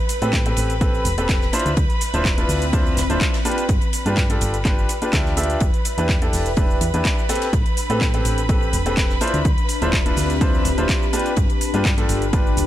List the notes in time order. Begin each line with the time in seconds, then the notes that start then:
Already playing: B4 B5
0.09 open hi-hat, ride, cabasa
0.22 A2 C4 G4 A4 B4, closed hi-hat, cabasa
0.33 kick, snare, clap, ride, cabasa
0.45 C4 G4 A4 B4, closed hi-hat, ride, cabasa
0.56 A1, open hi-hat, ride, cabasa
0.70 closed hi-hat, cabasa
0.81 C4 G4 A4 B4, kick, closed hi-hat, ride, cabasa
0.94 cabasa
1.05 E1, open hi-hat, ride, cabasa
1.18 C4 G4 A4 B4, closed hi-hat, ride, cabasa
1.29 kick, snare, clap, closed hi-hat, ride, cabasa
1.42 snare, cabasa
1.53 D4 E4 F4 C5, open hi-hat, ride, cabasa
1.59 closed hi-hat
1.66 D2, closed hi-hat, cabasa
1.77 D2, kick, closed hi-hat, ride, cabasa
1.90 closed hi-hat, cabasa
2.01 open hi-hat, ride, cabasa
2.11 D1 C4 D4 E4 F4 C5, closed hi-hat, cabasa
2.25 kick, snare, clap, ride, cabasa
2.38 D4 E4 F4 B4, closed hi-hat, cabasa
2.49 D2, snare, open hi-hat, cabasa
2.62 closed hi-hat, cabasa
2.73 D4 E4 F4 C5, kick, closed hi-hat, ride, cabasa
2.86 cabasa
2.97 D1, snare, open hi-hat, ride, cabasa
3.10 D1 D4 E4 F4 C5, closed hi-hat, ride, cabasa
3.21 kick, clap, closed hi-hat, ride, cabasa
3.34 snare, ride, cabasa
3.45 D4 F4 G4 B4, open hi-hat, ride, cabasa
3.51 closed hi-hat
3.58 closed hi-hat, ride, cabasa
3.69 G1, kick, closed hi-hat, ride, cabasa
3.81 closed hi-hat, ride, cabasa
3.93 open hi-hat, ride, cabasa
4.06 G2 D4 F4 G4 B4, closed hi-hat, cabasa
4.17 kick, snare, clap, ride, cabasa
4.30 D4 F4 G4 A4, closed hi-hat, ride, cabasa
4.41 G1 B4, open hi-hat, ride, cabasa
4.54 closed hi-hat, cabasa
4.65 D4 F4 G4 B4, kick, clap, closed hi-hat, ride, cabasa
4.78 cabasa
4.89 open hi-hat, ride, cabasa
5.02 D4 F4 G4 B4, closed hi-hat, ride, cabasa
5.13 D2 D4 F4 G4 E5, kick, snare, clap, closed hi-hat, ride, cabasa
5.26 snare, cabasa
5.37 D4 F4 G4 E5, open hi-hat, ride, cabasa
5.43 closed hi-hat
5.50 closed hi-hat, cabasa
5.60 E1 B4 B5, kick, closed hi-hat, ride, cabasa
5.74 closed hi-hat, cabasa
5.85 open hi-hat, ride, cabasa
5.98 E2 D4 E4 G4 B4, closed hi-hat, cabasa
6.08 kick, snare, clap, ride, cabasa
6.22 D4 E4 G4 A4, closed hi-hat, cabasa
6.33 E1, snare, open hi-hat, cabasa
6.46 closed hi-hat, cabasa
6.57 D4 E4 G4 B4, kick, closed hi-hat, ride, cabasa
6.70 cabasa
6.81 E2, open hi-hat, ride, cabasa
6.94 E2 D4 E4 G4 B4, closed hi-hat, cabasa
7.05 kick, snare, clap, closed hi-hat, ride, cabasa
7.18 cabasa
7.29 C4 D4 G4 A4 B4, snare, open hi-hat, ride, cabasa
7.35 closed hi-hat
7.41 snare, closed hi-hat, ride, cabasa
7.53 A1, kick, closed hi-hat, ride, cabasa
7.66 closed hi-hat, ride, cabasa
7.77 open hi-hat, ride, cabasa
7.90 A2 C4 G4 A4 B4, closed hi-hat, cabasa
8.01 kick, snare, clap, ride, cabasa
8.14 C4 G4 A4 B4, closed hi-hat, ride, cabasa
8.25 A1, open hi-hat, ride, cabasa
8.38 closed hi-hat, cabasa
8.49 C4 G4 A4 B4, kick, closed hi-hat, ride, cabasa
8.62 cabasa
8.73 E1, open hi-hat, ride, cabasa
8.86 C4 G4 A4 B4, closed hi-hat, ride, cabasa
8.97 kick, snare, clap, closed hi-hat, ride, cabasa
9.09 snare, cabasa
9.21 D4 E4 F4 C5, open hi-hat, ride, cabasa
9.27 closed hi-hat
9.34 D2, closed hi-hat, cabasa
9.45 D2, kick, closed hi-hat, ride, cabasa
9.58 closed hi-hat, cabasa
9.68 open hi-hat, ride, cabasa
9.79 D1 D4 E4 F4 G4 C5, closed hi-hat, cabasa
9.88 C4
9.93 kick, snare, clap, ride, cabasa
10.06 D4 E4 F4 B4, closed hi-hat, cabasa
10.16 D2, snare, open hi-hat, cabasa
10.30 closed hi-hat, cabasa
10.41 D4 E4 F4 C5, kick, closed hi-hat, ride, cabasa
10.54 cabasa
10.65 D1, open hi-hat, ride, cabasa
10.78 D1 D4 E4 F4 C5, closed hi-hat, cabasa
10.89 kick, snare, clap, closed hi-hat, ride, cabasa
11.02 cabasa
11.13 D4 F4 G4 B4, open hi-hat, ride, cabasa
11.19 closed hi-hat
11.26 closed hi-hat, cabasa
11.36 G1, kick, closed hi-hat, ride, cabasa
11.49 closed hi-hat, ride, cabasa
11.61 open hi-hat, ride, cabasa
11.74 G2 D4 F4 G4 B4, closed hi-hat, cabasa
11.84 kick, snare, clap, ride, cabasa
11.98 D4 F4 G4 A4, closed hi-hat, ride, cabasa
12.09 G1 B4, open hi-hat, ride, cabasa
12.22 closed hi-hat, cabasa
12.33 D4 F4 G4 B4, kick, closed hi-hat, ride, cabasa
12.46 cabasa
12.57 D1, open hi-hat, ride, cabasa